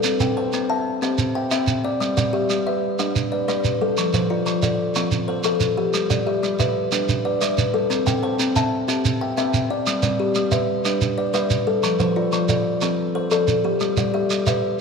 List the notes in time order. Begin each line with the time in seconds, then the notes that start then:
Already playing: G3 A4
0.04 C4, shekere
0.20 C4 G5, shekere
0.37 C5 A5
0.53 C4, shekere
0.70 E5 A5
1.02 C4 G4 C5, shekere
1.18 shekere
1.35 E5 G5
1.51 C4 E5, shekere
1.67 shekere
1.84 C4 D5
2.00 G3, shekere
2.17 G3 D5, shekere
2.33 G4 E5
2.50 G3, shekere
2.67 B4 E5
2.99 G3 D4 G4, shekere
3.16 shekere
3.32 B4 D5
3.48 G3 B4, shekere
3.64 shekere
3.81 G3 A4
3.97 F3, shekere
4.14 F3 C5, shekere
4.30 F4 D5
4.46 F3, shekere
4.63 A4 D5, shekere
4.95 F3 C4 F4, shekere
5.12 shekere
5.28 A4 C5
5.44 F3 A4, shekere
5.60 shekere
5.77 F3 G4
5.94 G3, shekere
6.10 G3 D5, shekere
6.26 G4 E5
6.43 G3, shekere
6.59 B4 E5, shekere
6.92 G3 D4 B4, shekere
7.09 shekere
7.25 B4 D5
7.41 G3 B4 E5, shekere
7.58 shekere
7.74 G3 A4
7.90 C4, shekere
8.06 C4 G5, shekere
8.23 C5 A5
8.40 C4, shekere
8.56 E5 A5, shekere
8.88 C4 G4 E5, shekere
9.05 shekere
9.21 E5 G5
9.37 C4 E5 A5, shekere
9.54 shekere
9.70 C4 D5
9.87 G3, shekere
10.03 G3 D5, shekere
10.20 G4
10.35 G3, shekere
10.52 B4 E5, shekere
10.85 G3 D4 B4, shekere
11.01 shekere
11.18 B4 D5
11.34 G3 B4 E5, shekere
11.50 shekere
11.67 G3 A4
11.83 F3, shekere
11.99 F3 C5, shekere
12.16 F4 D5
12.32 F3, shekere
12.49 A4 D5, shekere
12.82 F3 C4 A4, shekere
13.15 A4 C5
13.31 F3 A4 D5, shekere
13.48 shekere
13.64 F3 G4
13.80 G3, shekere
13.97 G3 D5, shekere
14.14 G4 E5
14.30 G3, shekere
14.47 B4 E5, shekere